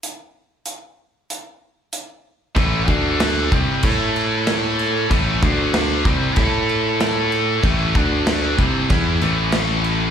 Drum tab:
CC |--------|xxxxxxxx|xxxxxxxx|xxxxxxxx|
HH |x-x-x-x-|--------|--------|--------|
SD |--------|--o---o-|--o---o-|--o---o-|
BD |--------|oo-oo---|oo-oo---|oo-oo---|